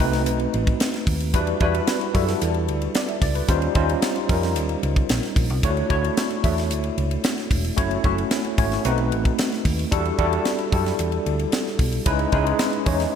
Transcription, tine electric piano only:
0.00 1.36 A3 medium
0.00 1.36 C4 medium
0.00 1.36 D#4 medium
0.00 1.34 F#4 medium
0.00 1.35 B4 loud
1.34 1.59 G3 medium
1.34 1.59 D4 medium
1.34 1.59 E4 medium
1.34 1.59 F#4 medium
1.34 1.59 B4 loud
1.61 2.10 G3 medium
1.61 2.11 D4 medium
1.61 2.11 E4 medium
1.61 2.11 F#4 medium
1.61 2.11 B4 loud
2.14 3.14 G3 medium
2.14 3.14 D4 medium
2.14 3.14 E4 medium
2.14 3.14 F#4 medium
2.14 3.14 A4 medium
2.95 3.08 D5 medium
3.09 3.21 E5 medium
3.22 3.35 D5 medium
3.35 3.61 B4 medium
3.49 3.73 G3 loud
3.49 3.73 C#4 medium
3.49 3.74 D#4 medium
3.49 3.74 F4 medium
3.49 3.74 C5 loud
3.75 4.25 G3 medium
3.75 4.25 C#4 medium
3.75 4.25 D#4 medium
3.75 4.25 F4 medium
3.75 4.25 C5 medium
4.29 5.28 G3 medium
4.29 5.29 C#4 medium
4.29 5.29 D#4 medium
4.29 5.29 F4 medium
4.29 5.29 A#4 medium
5.63 5.88 A3 medium
5.63 5.88 D4 medium
5.63 5.88 E4 medium
5.63 5.89 F#4 medium
5.63 5.89 C#5 loud
5.90 6.39 A3 medium
5.90 6.40 D4 medium
5.90 6.40 E4 medium
5.90 6.40 F#4 medium
5.90 6.40 C#5 loud
6.43 7.43 A3 medium
6.43 7.43 D4 medium
6.43 7.43 E4 medium
6.43 7.43 F#4 medium
6.43 7.43 E5 medium
7.76 8.02 A3 medium
7.76 8.02 C#4 medium
7.76 8.02 E4 medium
7.76 8.02 F#4 medium
7.76 8.02 C#5 loud
8.04 8.54 A3 medium
8.04 8.54 C#4 medium
8.04 8.54 E4 medium
8.04 8.54 F#4 medium
8.04 8.54 E5 loud
8.58 8.83 A3 medium
8.58 8.85 C#4 medium
8.58 8.85 E4 medium
8.58 8.84 F#4 medium
8.58 8.85 C#5 medium
8.84 9.84 A3 medium
8.84 9.84 C4 medium
8.84 9.84 D#4 medium
8.84 9.84 F#4 medium
8.84 9.84 B4 loud
9.91 10.16 G3 medium
9.91 10.17 D4 medium
9.91 10.17 E4 medium
9.91 10.17 F#4 medium
9.91 10.17 A4 loud
10.18 10.68 G3 medium
10.18 10.68 D4 medium
10.18 10.68 E4 medium
10.18 10.69 F#4 medium
10.18 10.69 A4 medium
10.72 11.71 G3 medium
10.72 11.72 D4 medium
10.72 11.72 E4 medium
10.72 11.72 F#4 medium
10.72 11.72 A4 medium
12.06 12.31 G#3 loud
12.06 12.31 C#4 medium
12.06 12.31 D#4 medium
12.06 12.31 E4 medium
12.06 12.31 B4 loud
12.32 12.82 G#3 medium
12.32 12.82 C#4 medium
12.32 12.82 D#4 medium
12.32 12.83 E4 medium
12.32 12.83 B4 medium
12.86 13.13 G#3 medium
12.86 13.13 C#4 medium
12.86 13.13 D#4 medium
12.86 13.13 E4 medium
12.86 13.14 C#5 medium

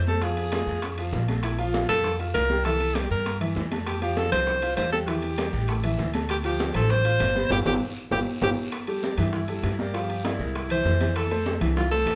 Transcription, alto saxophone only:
0.08 0.24 A4 medium
0.23 1.13 G#4 medium
1.44 1.58 E4 medium
1.59 1.87 F4 medium
1.89 2.17 A4 loud
2.34 2.66 A#4 loud
2.64 2.96 A4 loud
2.95 3.10 G4 medium
3.11 3.39 A#4 medium
3.87 4.01 G4 medium
4.03 4.19 G4 medium
4.17 4.31 A4 medium
4.32 4.74 C5 loud
4.77 4.91 C5 medium
4.92 4.99 A4 medium
5.07 5.94 G4 medium
6.31 6.37 G4 medium
6.46 6.73 G4 medium
6.76 6.93 A4 loud
6.91 7.51 C5 loud
7.52 7.59 G4 loud
7.67 7.74 G4 medium
8.12 8.19 G4 loud
8.43 8.50 G4 loud
8.89 9.36 G4 medium
9.34 9.81 E4 medium
9.80 10.27 G4 medium
10.26 10.71 E4 medium
10.71 11.18 C5 loud
11.17 11.62 A4 medium
11.77 11.91 F4 medium
11.91 12.15 A4 loud

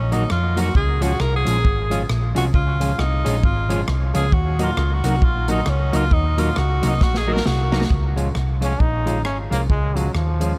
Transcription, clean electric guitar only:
0.12 0.22 F#3 medium
0.12 0.23 A#3 medium
0.12 0.23 D#4 medium
0.12 0.23 F#4 loud
0.29 muted clean electric guitar stroke soft
0.56 0.67 F#3 medium
0.56 0.67 A#3 medium
0.56 0.67 D#4 medium
0.56 0.68 F#4 loud
1.00 1.12 F3 medium
1.00 1.12 G#3 medium
1.00 1.12 C#4 medium
1.00 1.12 F4 loud
1.19 muted clean electric guitar stroke soft
1.44 1.56 F3 medium
1.44 1.56 G#3 medium
1.44 1.56 C#4 medium
1.44 1.57 F4 medium
1.90 2.01 F3 medium
1.90 2.01 G#3 medium
1.90 2.02 C#4 medium
1.90 2.02 F4 medium
2.35 2.46 F3 medium
2.35 2.46 G#3 medium
2.35 2.46 C#4 loud
2.35 2.46 F4 loud
2.80 2.91 F3 medium
2.80 2.91 G#3 medium
2.80 2.91 C#4 medium
2.80 2.91 F4 medium
2.98 muted clean electric guitar stroke soft
3.25 3.35 F3 medium
3.25 3.36 G#3 loud
3.25 3.36 C#4 loud
3.25 3.36 F4 medium
3.69 3.80 F3 loud
3.69 3.80 G#3 loud
3.69 3.80 C#4 loud
3.69 3.81 F4 loud
3.87 muted clean electric guitar stroke soft
4.14 4.25 F3 medium
4.14 4.25 G#3 medium
4.14 4.25 C#4 loud
4.14 4.25 F4 loud
4.59 4.70 F#3 medium
4.59 4.70 A#3 medium
4.59 4.70 D#4 medium
4.59 4.70 F#4 loud
4.76 muted clean electric guitar stroke soft
5.04 5.14 F#3 medium
5.04 5.15 A#3 medium
5.04 5.15 D#4 medium
5.04 5.15 F#4 medium
5.48 5.59 F#3 medium
5.48 5.59 A#3 loud
5.48 5.60 D#4 loud
5.48 5.60 F#4 loud
5.92 6.03 F#3 loud
5.92 6.04 A#3 loud
5.92 6.04 D#4 loud
5.92 6.04 F#4 medium
6.37 6.48 F#3 medium
6.37 6.49 A#3 medium
6.37 6.49 D#4 medium
6.37 6.49 F#4 medium
6.56 muted clean electric guitar stroke soft
6.82 6.93 F#3 medium
6.82 6.93 A#3 medium
6.82 6.94 D#4 medium
6.82 6.94 F#4 medium
7.27 7.38 F#3 loud
7.27 7.38 A#3 loud
7.27 7.38 D#4 loud
7.27 7.39 F#4 loud
7.46 muted clean electric guitar stroke soft
7.72 7.83 F#3 medium
7.72 7.83 A#3 loud
7.72 7.83 D#4 loud
7.72 7.83 F#4 loud
8.16 8.27 F3 medium
8.16 8.27 G#3 medium
8.16 8.28 C#4 medium
8.16 8.28 F4 medium
8.34 muted clean electric guitar stroke soft
8.61 8.72 F3 medium
8.61 8.72 G#3 medium
8.61 8.72 C#4 medium
8.61 8.72 F4 medium
9.05 9.17 F3 medium
9.05 9.17 G#3 loud
9.05 9.17 C#4 loud
9.05 9.17 F4 loud
9.50 9.62 F3 medium
9.50 9.62 G#3 medium
9.50 9.62 C#4 medium
9.50 9.62 F4 loud
9.95 10.06 F3 medium
9.95 10.07 G#3 medium
9.95 10.07 C#4 medium
9.95 10.07 F4 medium
10.40 10.51 F3 medium
10.40 10.51 G#3 medium
10.40 10.52 C#4 medium
10.40 10.52 F4 medium

